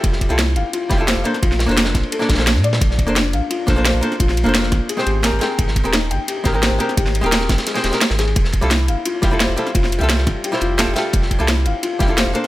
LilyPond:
<<
  \new Staff \with { instrumentName = "Felt piano" } { \time 4/4 \key f \major \tempo 4 = 173 r4 e'8 f''8 f'8 r8 c''8 c''8 | f'8 r4. a'8 d'8 r8 d''8 | r4 d'8 f''8 f'8 r8 c''8 c''8 | f'8 r4. aes'8 g'8 r8 aes'8 |
r4 ees'8 g''8 g'8 r8 c''8 c''8 | g'8 r4. aes'8 g'8 r8 aes'8 | r4 e'16 r16 f''8 f'8 r8 c''8 c''8 | f'8 r4. g'16 r16 f'16 r8. g'16 r16 |
r4 e'16 r16 f''8 f'8 r8 c''8 c''8 | }
  \new Staff \with { instrumentName = "Hollow-body jazz guitar" } { \time 4/4 \key f \major <g f' a' e''>8. <g e' f' a'>16 r4. <g e' f' g'>16 <g e' f' a'>8. <bes d' a' c''>16 r16 | r8. <bes d' a' c''>4. <bes d' a' d''>8 <bes d' a' c''>16 r4 | r8. <bes d' a' c''>16 r4. <bes d' a' c''>16 <bes d' a' c''>8. <bes d' a' c''>16 r16 | r8. <bes d' a' c''>4~ <bes d' a' c''>16 r16 <aes c' g' c''>8. <aes c' g' bes'>8 <aes c' bes' g''>8~ |
<aes c' bes' g''>8. <aes c' g' bes'>16 r4. <aes c' g' bes'>16 <aes c' g' bes'>8. <aes c' g' bes'>16 r16 | r8. <aes c' g' bes'>4. <aes c' g' c''>8 <aes c' g' bes'>16 r4 | r8. <g e' f' a'>16 r4. <g e' f' g'>16 <g e' f' a'>8. <g e' f' a'>16 r16 | r8. <g f' a' e''>4. <g e' f' c''>8. <g e' f' a'>8 <g f' a' e''>8~ |
<g f' a' e''>8. <g e' f' a'>16 r4. <g e' f' g'>16 <g e' f' a'>8. <bes d' a' c''>16 r16 | }
  \new Staff \with { instrumentName = "Sub bass" } { \clef bass \time 4/4 \key f \major f,,8. c,8. f,,16 r8. f,,8. f,,16 r8 | bes,,8. f,,8. bes,,16 r8. bes,,8. bes,8. | bes,,8. f,,8. bes,,16 r8. bes,,8. bes,,16 r8 | bes,,8. f,,8. bes,,16 r8. aes,,8. aes,,16 r8 |
aes,,8. ees,,8. aes,,16 r8. aes,,8. aes,,16 r8 | aes,,8. ees,,8. aes,,16 r8. ees,,16 r8 aes,,8. | f,,8. c,8. f,,16 r8. f,,8. f,,16 r8 | f,,8. c,8. f,,16 r8. f,,8. f,,16 r8 |
f,,8. c,8. f,,16 r8. f,,8. f,,16 r8 | }
  \new DrumStaff \with { instrumentName = "Drums" } \drummode { \time 4/4 <hh bd cymr>16 sn16 <hh bd cymr>16 hh16 <hh cymr sn>8 <hh cymr>8 <hh cymr>8 <hh bd cymr sn>8 <hh cymr sn>8 <hh cymr>16 sn16 | <hh bd cymr>16 <cymr sn>16 <hh cymr sn>16 <hh sn>16 <hh cymr sn>16 <cymr sn>16 <hh bd sn>16 cymr16 <hh cymr>16 sn16 <hh bd cymr sn>32 <cymr sn>32 <cymr sn>16 <hh cymr sn>16 sn16 <hh cymr>16 <cymr sn>16 | <hh bd cymr>16 sn16 <hh bd cymr>16 hh16 <hh cymr sn>8 <hh cymr>8 <hh cymr>8 <hh bd cymr sn>8 <hh cymr sn>8 <hh cymr>16 sn16 | <hh bd cymr>16 <cymr sn>16 <hh cymr>16 hh16 <hh cymr sn>16 sn16 <hh bd cymr sn>8 <hh cymr>16 sn16 <hh cymr>8 <hh cymr sn>8 <hh cymr sn>8 |
<hh bd cymr>16 sn16 <hh bd cymr>16 hh16 <hh cymr sn>8 <hh cymr>8 <hh cymr>8 <hh bd cymr sn>8 <hh cymr sn>8 <hh cymr>16 sn16 | <hh bd cymr>16 <cymr sn>16 <hh cymr>16 hh16 <hh cymr sn>16 sn16 <hh bd cymr sn>16 <hh cymr sn>16 <hh cymr sn>16 <hh cymr sn>16 <hh cymr sn>16 <hh cymr sn>16 <hh cymr sn>16 <cymr sn>16 <hh cymr sn>16 cymr16 | <hh bd cymr>16 sn16 <hh bd cymr>16 hh16 <hh cymr sn>8 <hh cymr>8 <hh cymr>8 <hh bd cymr sn>8 <hh cymr sn>8 <hh cymr>16 sn16 | <hh bd cymr>16 <cymr sn>16 <hh cymr>16 hh16 <hh cymr sn>16 sn16 <hh bd cymr sn>8 <hh cymr>16 sn16 <hh cymr>8 <hh cymr sn>8 <hh cymr sn>8 |
<hh bd cymr>16 sn16 <hh bd cymr>16 hh16 <hh cymr sn>8 <hh cymr>8 <hh cymr>8 <hh bd cymr sn>8 <hh cymr sn>8 <hh cymr>8 | }
>>